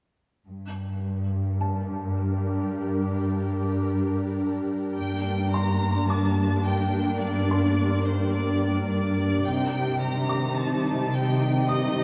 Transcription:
0.48 cello section G2, ambient pad G3 D4 G4 A#4
1.61 felt piano A5
4.97 cello section G2, ambient pad G3 D4 G4 A#4, viola section A#3 D4, violin section G5
5.53 violin section A#5, felt piano C6
6.09 violin section A5, felt piano D6
6.65 violin section G5
7.20 violin section D5
7.51 felt piano C6
8.05 violin section C5
8.32 violin section D5
8.88 violin section D5
9.46 cello section C3, ambient pad D#3 C4 G4 C5, viola section G3 D#4, violin section G5
10.01 violin section A#5
10.29 felt piano D6
10.57 violin section A5
11.14 violin section G5
11.69 violin section D#5, felt piano D#6

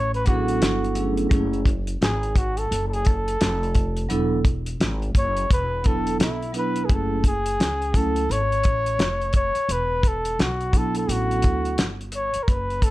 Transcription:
Already playing: upright bass A1, flugelhorn C#5
0.14 flugelhorn B4, closed hi-hat
0.25 vibraphone F#3 B3 D4 E4 G#4, flugelhorn F#4, kick, closed hi-hat
0.34 vibraphone A4
0.48 closed hi-hat
0.62 upright bass G1, snare, closed hi-hat
0.84 closed hi-hat
0.94 vibraphone F#3 A3 C#4 E4 G#4, closed hi-hat
1.17 closed hi-hat
1.29 upright bass F#1, vibraphone F#3 A3 C#4 E4 G#4, kick, closed hi-hat
1.53 closed hi-hat
1.66 kick, closed hi-hat
1.87 closed hi-hat
2.01 upright bass G#1, flugelhorn G#4, snare, closed hi-hat
2.23 closed hi-hat
2.36 flugelhorn F#4, kick, closed hi-hat
2.57 flugelhorn A4, closed hi-hat
2.71 upright bass F#1, closed hi-hat
2.88 flugelhorn A4
2.93 flugelhorn G#4, closed hi-hat
3.05 flugelhorn A4, kick, closed hi-hat
3.28 closed hi-hat
3.41 upright bass F1, snare, closed hi-hat
3.63 closed hi-hat
3.75 kick, closed hi-hat
3.97 closed hi-hat
4.09 upright bass E1, vibraphone F#3 B3 D4 E4 A4, closed hi-hat
4.45 kick, closed hi-hat
4.66 closed hi-hat
4.80 upright bass G#1, snare, closed hi-hat
5.02 closed hi-hat
5.15 upright bass F#1, flugelhorn C#5, kick, closed hi-hat
5.37 closed hi-hat
5.50 upright bass E1, flugelhorn B4, kick, closed hi-hat
5.83 vibraphone F#3 B3 D4 E4 A4, kick, closed hi-hat
5.87 flugelhorn A4
6.07 closed hi-hat
6.20 upright bass B1, flugelhorn E4, snare, closed hi-hat
6.43 closed hi-hat
6.53 vibraphone F#3 B3 D4 E4 B4, closed hi-hat
6.58 flugelhorn B4
6.76 closed hi-hat
6.86 vibraphone F#3 A3, flugelhorn G#4, kick
6.90 upright bass F#1, vibraphone C#4 E4 G#4, closed hi-hat
6.94 flugelhorn A4
7.24 flugelhorn G#4, kick, closed hi-hat
7.46 closed hi-hat
7.60 upright bass C#2, snare, closed hi-hat
7.82 closed hi-hat
7.93 vibraphone F#3 A3 C#4 E4 A4, kick, closed hi-hat
7.97 flugelhorn A4
8.16 closed hi-hat
8.29 upright bass G#1, flugelhorn C#5, closed hi-hat
8.52 closed hi-hat
8.63 upright bass A1, kick, closed hi-hat
8.86 closed hi-hat
8.99 upright bass F1, snare, closed hi-hat
9.22 closed hi-hat
9.33 flugelhorn C#5, kick, closed hi-hat
9.55 muted upright bass stroke, closed hi-hat
9.69 upright bass E1, flugelhorn B4, closed hi-hat
10.03 kick, closed hi-hat
10.08 flugelhorn A4
10.25 closed hi-hat
10.39 upright bass B1, flugelhorn F#4, snare, closed hi-hat
10.61 closed hi-hat
10.72 vibraphone F#3 B3 D4 E4 A4, kick, closed hi-hat
10.78 flugelhorn A4
10.95 flugelhorn A4, closed hi-hat
11.09 upright bass A1, flugelhorn F#4, closed hi-hat
11.31 closed hi-hat
11.42 upright bass D2, kick, closed hi-hat
11.65 closed hi-hat
11.78 upright bass G1, snare, closed hi-hat
12.01 closed hi-hat
12.12 flugelhorn C#5, closed hi-hat
12.34 muted upright bass stroke, closed hi-hat
12.43 flugelhorn A#4
12.48 upright bass F#1, flugelhorn B4, kick, closed hi-hat
12.70 closed hi-hat
12.82 flugelhorn A4, kick, closed hi-hat

